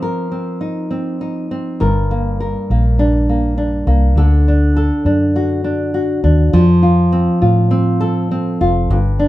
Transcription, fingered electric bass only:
1.81 2.54 G1 loud
2.70 3.84 A#1 medium
3.87 4.15 C2 medium
4.16 4.90 D2 loud
5.05 6.20 F#2 medium
6.24 6.51 D#2 medium
6.53 7.27 F2 medium
7.42 8.57 A2 medium
8.61 8.88 F1 medium
8.90 9.28 G1 loud

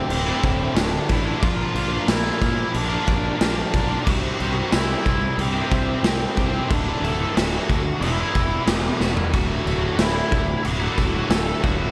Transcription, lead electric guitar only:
0.00 0.72 C4 medium
0.00 0.76 C5 medium
0.76 1.39 D4 medium
0.76 1.45 D5 medium
1.43 2.05 F4 medium
1.43 2.05 F5 medium
2.09 2.71 E4 medium
2.09 2.71 E5 medium
2.74 3.36 D4 medium
2.74 3.36 D5 medium
3.42 4.04 D4 medium
3.42 4.09 D5 medium
4.09 4.70 F#4 medium
4.09 4.73 F#5 loud
4.74 5.35 E4 medium
4.74 5.41 E5 loud
5.40 6.01 C4 medium
5.40 6.01 C5 medium
6.05 6.67 C4 medium
6.05 6.72 C5 medium
6.73 7.02 D4 medium
6.73 7.05 D5 medium
7.04 7.34 A4 medium
7.04 7.38 A5 medium
7.35 7.97 F#4 medium
7.35 7.98 F#5 loud
8.01 8.96 E4 medium
8.01 8.74 E5 loud
8.74 9.00 D5 loud
9.00 9.09 F#4 medium
9.00 9.09 F#5 medium
9.34 9.95 F#4 medium
9.34 10.01 F#5 medium
10.00 10.61 E4 medium
10.00 10.68 E5 medium
10.65 11.26 F#4 medium
10.65 11.30 F#5 loud
11.29 11.60 A4 medium
11.29 11.63 A5 medium
11.63 11.91 F#4 medium
11.63 11.91 F#5 medium

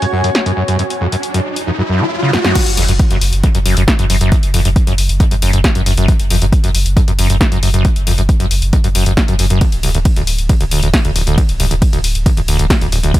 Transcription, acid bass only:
0.02 0.06 F#2 loud
0.13 0.22 F#2 medium
0.24 0.30 F#2 medium
0.46 0.52 F#2 loud
0.57 0.63 F#2 medium
0.68 0.77 F#2 loud
0.79 0.83 F#2 medium
1.01 1.07 F2 loud
1.12 1.16 F#2 medium
1.34 1.40 F#2 loud
1.67 1.71 F2 medium
1.78 1.82 F#2 loud
1.89 2.02 F#2 loud
2.01 2.04 F#3 medium
2.23 2.31 C#3 medium
2.33 2.37 F#2 loud
2.44 2.53 F#2 medium
2.55 2.59 F#2 medium
2.77 2.84 F2 loud
2.89 2.92 F#2 medium
3.11 3.17 F#2 loud
3.44 3.47 F2 medium
3.55 3.58 F#2 loud
3.66 3.75 F#2 medium
3.77 3.83 F#2 medium
3.99 4.05 F#2 loud
4.10 4.16 F#2 medium
4.21 4.30 F#2 loud
4.54 4.60 F2 loud
4.65 4.69 F#2 medium
4.87 4.93 F#2 loud
5.20 5.24 F2 medium
5.31 5.35 F#2 loud
5.42 5.51 F#2 medium
5.53 5.59 F#2 medium
5.75 5.81 F#2 loud
5.86 5.92 F#2 medium
5.98 6.06 F#2 loud
6.31 6.37 F2 loud
6.42 6.45 F#2 medium
6.64 6.70 F#2 loud
6.97 7.00 F2 medium
7.08 7.11 F#2 loud
7.19 7.28 F#2 medium
7.30 7.36 F#2 medium
7.52 7.58 F#2 loud
7.63 7.69 F#2 medium
7.74 7.83 F#2 loud
8.07 8.13 F2 loud
8.18 8.22 F#2 medium
8.40 8.46 F#2 loud
8.73 8.77 F2 medium
8.84 8.88 F#2 loud
8.95 9.04 F#2 medium
9.06 9.12 F#2 medium
9.28 9.34 F#2 loud
9.39 9.45 F#2 medium
9.50 9.59 F#2 loud
9.61 9.65 D2 medium
9.83 9.89 C2 loud
9.94 9.98 D2 medium
10.17 10.23 D2 loud
10.49 10.53 C2 medium
10.61 10.64 D2 loud
10.72 10.81 D2 medium
10.83 10.89 D2 medium
11.05 11.11 D2 loud
11.16 11.22 D1 medium
11.27 11.36 D2 loud
11.60 11.66 C2 loud
11.71 11.75 D2 medium
11.93 11.99 D2 loud
12.26 12.30 C2 medium
12.37 12.41 D2 loud
12.48 12.57 D2 medium
12.59 12.65 D2 medium
12.81 12.87 D2 loud
12.92 12.98 D1 medium
13.03 13.12 D2 loud

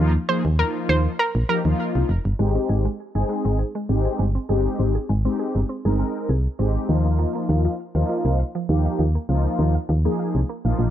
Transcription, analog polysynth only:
0.00 0.13 F3 medium
0.00 0.13 A#3 medium
0.00 0.13 D#4 medium
0.00 0.13 F4 loud
0.29 0.43 F3 medium
0.29 0.43 A#3 medium
0.29 0.43 D#4 medium
0.29 0.43 G#4 medium
0.59 1.12 F3 medium
0.59 1.12 A#3 medium
0.59 1.12 D#4 medium
0.59 1.13 F4 medium
1.49 1.58 F3 medium
1.49 1.58 A#3 medium
1.49 1.58 D#4 medium
1.49 1.59 G4 medium
1.65 2.08 F3 medium
1.65 2.08 A#3 medium
1.65 2.08 D#4 medium
1.65 2.08 F4 medium
2.39 2.84 G#3 loud
2.39 2.84 C4 medium
2.39 2.84 D#4 medium
2.39 2.84 G4 loud
3.15 3.58 G#3 loud
3.15 3.58 C4 medium
3.15 3.58 D#4 medium
3.15 3.58 G#4 loud
3.89 4.25 G#3 medium
3.89 4.25 C4 medium
3.89 4.25 D#4 medium
3.89 4.25 G4 loud
4.49 4.94 G#3 loud
4.49 4.94 C4 medium
4.49 4.94 D#4 medium
4.49 4.94 G4 loud
5.25 5.60 G#3 medium
5.25 5.60 C4 medium
5.25 5.60 D#4 medium
5.25 5.60 G4 loud
5.85 6.28 G#3 medium
5.85 6.28 C4 medium
5.85 6.28 D#4 medium
5.85 6.29 A#4 loud
6.59 6.89 G#3 medium
6.59 6.89 C4 medium
6.59 6.88 D#4 medium
6.59 6.89 G4 loud
6.89 7.73 F3 medium
6.89 7.73 A#3 medium
6.89 7.74 D#4 medium
6.89 7.74 F4 loud
7.95 8.38 F3 loud
7.95 8.38 A#3 loud
7.95 8.38 D#4 loud
7.95 8.38 F4 loud
8.69 9.05 F3 medium
8.69 9.05 A#3 medium
8.69 9.05 D#4 medium
8.69 9.05 G4 loud
9.29 9.74 F3 loud
9.29 9.74 A#3 medium
9.29 9.74 D#4 medium
9.29 9.74 F4 loud
10.05 10.40 F3 medium
10.05 10.40 A#3 medium
10.05 10.40 D#4 medium
10.05 10.40 G#4 loud
10.65 10.90 F3 loud
10.65 10.90 A#3 medium
10.65 10.90 D#4 medium
10.65 10.90 F4 loud

